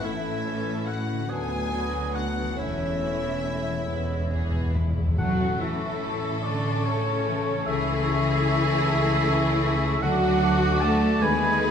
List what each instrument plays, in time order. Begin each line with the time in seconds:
Already playing: harp A2 C#4 E4
0.00 double bass section A1, cello section A2, timpani A2, viola section A3, violin section E4 E5, oboe E4, harp E5
0.04 french horn section E3 C#4, bassoon A3
0.45 viola section E3 C#4, violin section C#4 A4
0.86 viola section A3, violin section E4 F#5, oboe F#4
1.12 harp D3
1.17 harp D4
1.21 harp F#4
1.26 double bass section D2, cello section D2, viola section D3 B3, french horn section F#3 B3, bassoon B3, violin section D4 G#5, harp B4
1.30 oboe G#4
1.72 viola section F#3 D4, violin section B3 F#4
2.15 viola section D3 B3, violin section D4 F#5, oboe F#4
2.40 harp E3
2.45 harp C#4
2.50 harp E4
2.54 double bass section E1, cello section E2, viola section A3, bassoon C#4, harp A4, violin section E5
2.58 french horn section A3 C#4, violin section C#4 E4, oboe E4
3.00 viola section E3 C#4, violin section C#4 E4
3.44 viola section A3, violin section C#4 E4
3.70 harp E3
3.75 harp B3
3.79 harp E4
3.84 double bass section E1, cello section E2, timpani E2, viola section G#3, harp G#4
3.88 french horn section G#3 B3, violin section E4
3.95 timpani E2
4.03 timpani E2
4.11 timpani E2
4.19 timpani E2
4.27 timpani E2, viola section E3 B3
4.32 timpani E2, violin section B3 G#4
4.43 timpani E2
4.50 timpani E2
4.58 timpani E2
4.66 timpani E2
4.74 timpani E2, viola section G#3, violin section E4
4.83 timpani E2
4.91 timpani E2
4.99 timpani E2
5.08 timpani E2
5.18 double bass section A1, timpani A2, harp A2, cello section F#3, bassoon A3, violin section A3 A4, french horn section A3 C#4, viola section F#4, clarinet F#5, oboe F#5, flute section C#6
5.40 violin section C#4, harp C#4
5.61 cello section E3, violin section A3, viola section E4, harp E4, clarinet E5, oboe E5
5.83 violin section C#4, harp A4
6.03 violin section A3, harp C#5
6.24 violin section C#4, harp E5
6.43 cello section D3, violin section A3, viola section D4, oboe D5, clarinet D5, harp A5
6.65 violin section C#4, harp E5
6.84 cello section C#3, violin section A3, viola section C#4, oboe C#5, clarinet C#5, harp C#5
7.07 violin section C#4, harp E4
7.27 harp E3, violin section A3
7.48 violin section C#4, harp C#4
7.66 double bass section C#2, harp C#3, cello section E3, violin section A3 G#4, viola section E4, oboe E5, clarinet E5
7.88 violin section A3, harp C#4
8.07 violin section A3, harp E4
8.28 violin section A3, harp A4
8.47 violin section A3, harp C#5
8.66 violin section A3, harp E5
8.86 violin section A3, harp A5
9.05 violin section A3, harp E5
9.24 violin section A3, harp C#5
9.43 violin section A3, harp E4
9.62 violin section A3, harp A3
9.82 violin section A3, harp C#4
10.01 double bass section D2, harp D3, cello section F#3, french horn section A3 D4, violin section A3 F#4, bassoon A3, viola section F#4, oboe F#5, clarinet F#5, flute section D6
10.22 harp D4
10.42 harp A4
10.80 cello section A3, viola section A4, harp D5, oboe A5, clarinet A5
11.20 double bass section D#2, harp D#3, cello section G#3, violin section B3 B4, french horn section B3, viola section G#4, oboe G#5, clarinet G#5, flute section B5
11.42 harp A3
11.62 harp F#4